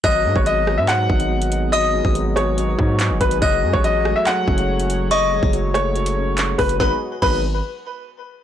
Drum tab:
CC |----------------|----------------|----------------|----------------|
HH |x---x---x--x-xx-|x---x-x-x---x-xx|x---x---x--x-xx-|x---x-x-xx--x-ox|
CP |--------x-------|------------x---|--------x-------|------------x---|
SD |------r---------|------r---------|------r---------|------r-------r-|
BD |o--o------o-----|---o------o---o-|o--o------o-----|---o----------o-|

CC |----x-----------|
HH |----------------|
CP |----------------|
SD |o---------------|
BD |o---o-----------|